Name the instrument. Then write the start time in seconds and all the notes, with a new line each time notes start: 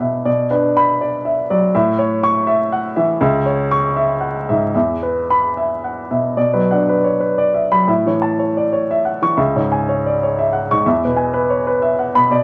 grand piano
Already playing: E2 B4 F#5 B5
0.00 B2 E5
0.25 B2 D5
0.51 D4 B4
0.77 B5
1.01 D5
1.25 E5
1.50 F#3 D5
1.75 A2 E5
1.99 C#5
2.23 C#6
2.47 E5
2.72 F#5
2.96 E3 E5
3.21 C#2 E5
3.46 C#5
3.71 C#6
3.97 E5
4.21 F#5
4.49 G#2 E5
4.75 E2 E5
5.03 B4
5.30 B5
5.57 E5
5.84 F#5
6.11 B2 E5
6.37 B2 D5
6.53 F#3 B4
6.71 D4 F#5
6.89 B4
7.04 C#5
7.20 B4
7.38 D5
7.54 E5
7.72 F#3 B5
7.87 A2 E5
8.06 E3 C#5
8.22 A5
8.39 C#5
8.57 D5
8.73 C#5
8.91 E5
9.05 F#5
9.22 E3 C#6
9.37 C#2 E5
9.55 G#2 C#5
9.72 G#5
9.89 C#5
10.06 D5
10.23 C#5
10.39 E5
10.53 F#5
10.71 G#2 C#6
10.86 E2 E5
11.05 B2 B4
11.16 G#5
11.34 B4
11.50 C#5
11.67 B4
11.82 E5
11.99 F#5
12.15 B2 B5
12.31 B2 D5